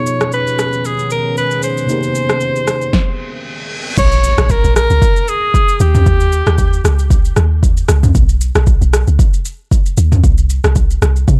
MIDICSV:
0, 0, Header, 1, 8, 480
1, 0, Start_track
1, 0, Tempo, 521739
1, 1738, Time_signature, 4, 2, 24, 8
1, 10487, End_track
2, 0, Start_track
2, 0, Title_t, "Alto saxophone"
2, 0, Program_c, 0, 65
2, 0, Note_on_c, 0, 73, 101
2, 268, Note_off_c, 0, 73, 0
2, 305, Note_on_c, 0, 71, 104
2, 784, Note_on_c, 0, 68, 96
2, 798, Note_off_c, 0, 71, 0
2, 1019, Note_off_c, 0, 68, 0
2, 1024, Note_on_c, 0, 70, 91
2, 1244, Note_off_c, 0, 70, 0
2, 1265, Note_on_c, 0, 71, 102
2, 1485, Note_off_c, 0, 71, 0
2, 1504, Note_on_c, 0, 72, 101
2, 3144, Note_off_c, 0, 72, 0
2, 3665, Note_on_c, 0, 73, 112
2, 4145, Note_on_c, 0, 70, 101
2, 4158, Note_off_c, 0, 73, 0
2, 4379, Note_off_c, 0, 70, 0
2, 4384, Note_on_c, 0, 70, 107
2, 4865, Note_on_c, 0, 68, 105
2, 4879, Note_off_c, 0, 70, 0
2, 5338, Note_off_c, 0, 68, 0
2, 5344, Note_on_c, 0, 67, 94
2, 6264, Note_off_c, 0, 67, 0
2, 10487, End_track
3, 0, Start_track
3, 0, Title_t, "Tine electric piano"
3, 0, Program_c, 1, 4
3, 0, Note_on_c, 1, 47, 63
3, 0, Note_on_c, 1, 59, 60
3, 0, Note_on_c, 1, 63, 62
3, 0, Note_on_c, 1, 68, 61
3, 0, Note_on_c, 1, 73, 74
3, 17, Control_c, 1, 64, 127
3, 1688, Note_off_c, 1, 47, 0
3, 1696, Note_off_c, 1, 59, 0
3, 1711, Note_off_c, 1, 68, 0
3, 1712, Note_on_c, 1, 48, 65
3, 1719, Note_off_c, 1, 73, 0
3, 1728, Note_on_c, 1, 58, 62
3, 1732, Note_off_c, 1, 63, 0
3, 1744, Note_on_c, 1, 63, 63
3, 1748, Control_c, 1, 64, 0
3, 1760, Note_on_c, 1, 67, 59
3, 1775, Note_on_c, 1, 70, 57
3, 1820, Note_off_c, 1, 70, 0
3, 1895, Control_c, 1, 64, 127
3, 2666, Note_off_c, 1, 48, 0
3, 2674, Note_off_c, 1, 58, 0
3, 2682, Note_off_c, 1, 63, 0
3, 2690, Note_off_c, 1, 67, 0
3, 2711, Control_c, 1, 64, 0
3, 10487, End_track
4, 0, Start_track
4, 0, Title_t, "Ambient pad"
4, 0, Program_c, 2, 92
4, 0, Note_on_c, 2, 51, 80
4, 0, Note_on_c, 2, 59, 71
4, 0, Note_on_c, 2, 61, 71
4, 0, Note_on_c, 2, 68, 87
4, 1719, Note_off_c, 2, 59, 0
4, 1719, Note_off_c, 2, 61, 0
4, 1719, Note_off_c, 2, 68, 0
4, 1738, Note_on_c, 2, 58, 69
4, 1738, Note_on_c, 2, 60, 69
4, 1738, Note_on_c, 2, 67, 88
4, 2669, Note_off_c, 2, 51, 0
4, 2688, Note_off_c, 2, 58, 0
4, 2688, Note_off_c, 2, 60, 0
4, 2688, Note_off_c, 2, 67, 0
4, 10487, End_track
5, 0, Start_track
5, 0, Title_t, "Log drum bass"
5, 0, Program_c, 3, 39
5, 3658, Note_on_c, 3, 34, 110
5, 3992, Note_off_c, 3, 34, 0
5, 4030, Note_on_c, 3, 34, 92
5, 4245, Note_off_c, 3, 34, 0
5, 4270, Note_on_c, 3, 34, 95
5, 4485, Note_off_c, 3, 34, 0
5, 4510, Note_on_c, 3, 37, 95
5, 4607, Note_off_c, 3, 37, 0
5, 5338, Note_on_c, 3, 39, 111
5, 5553, Note_off_c, 3, 39, 0
5, 5578, Note_on_c, 3, 39, 111
5, 5912, Note_off_c, 3, 39, 0
5, 5950, Note_on_c, 3, 39, 86
5, 6262, Note_off_c, 3, 39, 0
5, 6298, Note_on_c, 3, 37, 94
5, 6728, Note_off_c, 3, 37, 0
5, 6778, Note_on_c, 3, 39, 91
5, 7208, Note_off_c, 3, 39, 0
5, 7258, Note_on_c, 3, 37, 100
5, 7473, Note_off_c, 3, 37, 0
5, 7497, Note_on_c, 3, 35, 113
5, 7831, Note_off_c, 3, 35, 0
5, 7869, Note_on_c, 3, 35, 97
5, 8085, Note_off_c, 3, 35, 0
5, 8109, Note_on_c, 3, 35, 102
5, 8325, Note_off_c, 3, 35, 0
5, 8350, Note_on_c, 3, 37, 85
5, 8447, Note_off_c, 3, 37, 0
5, 9178, Note_on_c, 3, 39, 96
5, 9393, Note_off_c, 3, 39, 0
5, 9418, Note_on_c, 3, 36, 116
5, 9752, Note_off_c, 3, 36, 0
5, 9789, Note_on_c, 3, 36, 92
5, 10102, Note_off_c, 3, 36, 0
5, 10138, Note_on_c, 3, 36, 94
5, 10353, Note_off_c, 3, 36, 0
5, 10376, Note_on_c, 3, 48, 113
5, 10487, Note_off_c, 3, 48, 0
5, 10487, End_track
6, 0, Start_track
6, 0, Title_t, "Impact"
6, 0, Program_c, 4, 103
6, 3658, Note_on_c, 4, 60, 91
6, 5578, Note_off_c, 4, 60, 0
6, 10487, End_track
7, 0, Start_track
7, 0, Title_t, "Reverse cymbal"
7, 0, Program_c, 5, 119
7, 2698, Note_on_c, 5, 60, 83
7, 3658, Note_off_c, 5, 60, 0
7, 10487, End_track
8, 0, Start_track
8, 0, Title_t, "Drums"
8, 58, Note_on_c, 9, 82, 87
8, 150, Note_off_c, 9, 82, 0
8, 189, Note_on_c, 9, 82, 47
8, 192, Note_on_c, 9, 37, 95
8, 281, Note_off_c, 9, 82, 0
8, 284, Note_off_c, 9, 37, 0
8, 295, Note_on_c, 9, 82, 70
8, 387, Note_off_c, 9, 82, 0
8, 434, Note_on_c, 9, 82, 56
8, 526, Note_off_c, 9, 82, 0
8, 541, Note_on_c, 9, 82, 81
8, 542, Note_on_c, 9, 37, 88
8, 633, Note_off_c, 9, 82, 0
8, 634, Note_off_c, 9, 37, 0
8, 670, Note_on_c, 9, 82, 52
8, 762, Note_off_c, 9, 82, 0
8, 780, Note_on_c, 9, 82, 76
8, 872, Note_off_c, 9, 82, 0
8, 910, Note_on_c, 9, 82, 49
8, 1002, Note_off_c, 9, 82, 0
8, 1016, Note_on_c, 9, 82, 84
8, 1108, Note_off_c, 9, 82, 0
8, 1263, Note_on_c, 9, 82, 68
8, 1355, Note_off_c, 9, 82, 0
8, 1390, Note_on_c, 9, 82, 56
8, 1482, Note_off_c, 9, 82, 0
8, 1495, Note_on_c, 9, 82, 99
8, 1587, Note_off_c, 9, 82, 0
8, 1633, Note_on_c, 9, 82, 56
8, 1725, Note_off_c, 9, 82, 0
8, 1739, Note_on_c, 9, 82, 77
8, 1831, Note_off_c, 9, 82, 0
8, 1868, Note_on_c, 9, 82, 56
8, 1960, Note_off_c, 9, 82, 0
8, 1978, Note_on_c, 9, 82, 88
8, 2070, Note_off_c, 9, 82, 0
8, 2109, Note_on_c, 9, 82, 48
8, 2111, Note_on_c, 9, 37, 98
8, 2201, Note_off_c, 9, 82, 0
8, 2203, Note_off_c, 9, 37, 0
8, 2214, Note_on_c, 9, 82, 68
8, 2306, Note_off_c, 9, 82, 0
8, 2353, Note_on_c, 9, 82, 54
8, 2445, Note_off_c, 9, 82, 0
8, 2460, Note_on_c, 9, 82, 83
8, 2461, Note_on_c, 9, 37, 93
8, 2552, Note_off_c, 9, 82, 0
8, 2553, Note_off_c, 9, 37, 0
8, 2589, Note_on_c, 9, 82, 53
8, 2681, Note_off_c, 9, 82, 0
8, 2698, Note_on_c, 9, 36, 101
8, 2698, Note_on_c, 9, 38, 87
8, 2790, Note_off_c, 9, 36, 0
8, 2790, Note_off_c, 9, 38, 0
8, 3658, Note_on_c, 9, 36, 107
8, 3658, Note_on_c, 9, 49, 108
8, 3658, Note_on_c, 9, 82, 85
8, 3750, Note_off_c, 9, 36, 0
8, 3750, Note_off_c, 9, 49, 0
8, 3750, Note_off_c, 9, 82, 0
8, 3788, Note_on_c, 9, 82, 60
8, 3880, Note_off_c, 9, 82, 0
8, 3899, Note_on_c, 9, 82, 94
8, 3991, Note_off_c, 9, 82, 0
8, 4029, Note_on_c, 9, 82, 51
8, 4031, Note_on_c, 9, 37, 99
8, 4121, Note_off_c, 9, 82, 0
8, 4123, Note_off_c, 9, 37, 0
8, 4134, Note_on_c, 9, 82, 76
8, 4137, Note_on_c, 9, 36, 96
8, 4226, Note_off_c, 9, 82, 0
8, 4229, Note_off_c, 9, 36, 0
8, 4273, Note_on_c, 9, 82, 61
8, 4365, Note_off_c, 9, 82, 0
8, 4380, Note_on_c, 9, 82, 90
8, 4381, Note_on_c, 9, 37, 98
8, 4472, Note_off_c, 9, 82, 0
8, 4473, Note_off_c, 9, 37, 0
8, 4509, Note_on_c, 9, 82, 58
8, 4601, Note_off_c, 9, 82, 0
8, 4617, Note_on_c, 9, 36, 122
8, 4620, Note_on_c, 9, 82, 83
8, 4709, Note_off_c, 9, 36, 0
8, 4712, Note_off_c, 9, 82, 0
8, 4750, Note_on_c, 9, 82, 54
8, 4842, Note_off_c, 9, 82, 0
8, 4857, Note_on_c, 9, 82, 93
8, 4949, Note_off_c, 9, 82, 0
8, 5098, Note_on_c, 9, 36, 93
8, 5103, Note_on_c, 9, 82, 78
8, 5190, Note_off_c, 9, 36, 0
8, 5195, Note_off_c, 9, 82, 0
8, 5231, Note_on_c, 9, 82, 59
8, 5323, Note_off_c, 9, 82, 0
8, 5336, Note_on_c, 9, 82, 113
8, 5428, Note_off_c, 9, 82, 0
8, 5472, Note_on_c, 9, 45, 105
8, 5473, Note_on_c, 9, 82, 61
8, 5564, Note_off_c, 9, 45, 0
8, 5565, Note_off_c, 9, 82, 0
8, 5578, Note_on_c, 9, 36, 102
8, 5578, Note_on_c, 9, 82, 85
8, 5670, Note_off_c, 9, 36, 0
8, 5670, Note_off_c, 9, 82, 0
8, 5707, Note_on_c, 9, 82, 60
8, 5799, Note_off_c, 9, 82, 0
8, 5818, Note_on_c, 9, 82, 95
8, 5910, Note_off_c, 9, 82, 0
8, 5949, Note_on_c, 9, 82, 51
8, 5951, Note_on_c, 9, 37, 108
8, 6041, Note_off_c, 9, 82, 0
8, 6043, Note_off_c, 9, 37, 0
8, 6054, Note_on_c, 9, 82, 79
8, 6057, Note_on_c, 9, 36, 94
8, 6146, Note_off_c, 9, 82, 0
8, 6149, Note_off_c, 9, 36, 0
8, 6193, Note_on_c, 9, 82, 60
8, 6285, Note_off_c, 9, 82, 0
8, 6300, Note_on_c, 9, 82, 94
8, 6301, Note_on_c, 9, 37, 99
8, 6392, Note_off_c, 9, 82, 0
8, 6393, Note_off_c, 9, 37, 0
8, 6430, Note_on_c, 9, 82, 61
8, 6522, Note_off_c, 9, 82, 0
8, 6536, Note_on_c, 9, 36, 118
8, 6539, Note_on_c, 9, 82, 85
8, 6628, Note_off_c, 9, 36, 0
8, 6631, Note_off_c, 9, 82, 0
8, 6670, Note_on_c, 9, 82, 58
8, 6762, Note_off_c, 9, 82, 0
8, 6775, Note_on_c, 9, 37, 93
8, 6776, Note_on_c, 9, 82, 94
8, 6867, Note_off_c, 9, 37, 0
8, 6868, Note_off_c, 9, 82, 0
8, 7017, Note_on_c, 9, 36, 94
8, 7022, Note_on_c, 9, 82, 77
8, 7109, Note_off_c, 9, 36, 0
8, 7114, Note_off_c, 9, 82, 0
8, 7150, Note_on_c, 9, 82, 61
8, 7242, Note_off_c, 9, 82, 0
8, 7254, Note_on_c, 9, 37, 98
8, 7255, Note_on_c, 9, 82, 109
8, 7346, Note_off_c, 9, 37, 0
8, 7347, Note_off_c, 9, 82, 0
8, 7390, Note_on_c, 9, 45, 99
8, 7392, Note_on_c, 9, 82, 63
8, 7482, Note_off_c, 9, 45, 0
8, 7484, Note_off_c, 9, 82, 0
8, 7497, Note_on_c, 9, 36, 108
8, 7497, Note_on_c, 9, 82, 80
8, 7589, Note_off_c, 9, 36, 0
8, 7589, Note_off_c, 9, 82, 0
8, 7627, Note_on_c, 9, 82, 62
8, 7719, Note_off_c, 9, 82, 0
8, 7737, Note_on_c, 9, 82, 98
8, 7829, Note_off_c, 9, 82, 0
8, 7868, Note_on_c, 9, 82, 49
8, 7870, Note_on_c, 9, 37, 104
8, 7960, Note_off_c, 9, 82, 0
8, 7962, Note_off_c, 9, 37, 0
8, 7973, Note_on_c, 9, 82, 73
8, 7976, Note_on_c, 9, 36, 96
8, 8065, Note_off_c, 9, 82, 0
8, 8068, Note_off_c, 9, 36, 0
8, 8112, Note_on_c, 9, 82, 62
8, 8204, Note_off_c, 9, 82, 0
8, 8219, Note_on_c, 9, 82, 92
8, 8220, Note_on_c, 9, 37, 98
8, 8311, Note_off_c, 9, 82, 0
8, 8312, Note_off_c, 9, 37, 0
8, 8348, Note_on_c, 9, 82, 61
8, 8440, Note_off_c, 9, 82, 0
8, 8456, Note_on_c, 9, 36, 122
8, 8458, Note_on_c, 9, 82, 81
8, 8548, Note_off_c, 9, 36, 0
8, 8550, Note_off_c, 9, 82, 0
8, 8589, Note_on_c, 9, 82, 55
8, 8681, Note_off_c, 9, 82, 0
8, 8696, Note_on_c, 9, 82, 93
8, 8788, Note_off_c, 9, 82, 0
8, 8937, Note_on_c, 9, 36, 93
8, 8942, Note_on_c, 9, 82, 73
8, 9029, Note_off_c, 9, 36, 0
8, 9034, Note_off_c, 9, 82, 0
8, 9069, Note_on_c, 9, 82, 58
8, 9161, Note_off_c, 9, 82, 0
8, 9175, Note_on_c, 9, 82, 110
8, 9267, Note_off_c, 9, 82, 0
8, 9311, Note_on_c, 9, 45, 102
8, 9312, Note_on_c, 9, 82, 62
8, 9403, Note_off_c, 9, 45, 0
8, 9404, Note_off_c, 9, 82, 0
8, 9418, Note_on_c, 9, 36, 108
8, 9418, Note_on_c, 9, 82, 83
8, 9510, Note_off_c, 9, 36, 0
8, 9510, Note_off_c, 9, 82, 0
8, 9547, Note_on_c, 9, 82, 61
8, 9639, Note_off_c, 9, 82, 0
8, 9658, Note_on_c, 9, 82, 98
8, 9750, Note_off_c, 9, 82, 0
8, 9789, Note_on_c, 9, 82, 51
8, 9792, Note_on_c, 9, 37, 104
8, 9881, Note_off_c, 9, 82, 0
8, 9884, Note_off_c, 9, 37, 0
8, 9894, Note_on_c, 9, 82, 79
8, 9897, Note_on_c, 9, 36, 95
8, 9986, Note_off_c, 9, 82, 0
8, 9989, Note_off_c, 9, 36, 0
8, 10033, Note_on_c, 9, 82, 63
8, 10125, Note_off_c, 9, 82, 0
8, 10140, Note_on_c, 9, 37, 97
8, 10140, Note_on_c, 9, 82, 93
8, 10232, Note_off_c, 9, 37, 0
8, 10232, Note_off_c, 9, 82, 0
8, 10269, Note_on_c, 9, 82, 57
8, 10361, Note_off_c, 9, 82, 0
8, 10376, Note_on_c, 9, 36, 124
8, 10378, Note_on_c, 9, 82, 80
8, 10468, Note_off_c, 9, 36, 0
8, 10470, Note_off_c, 9, 82, 0
8, 10487, End_track
0, 0, End_of_file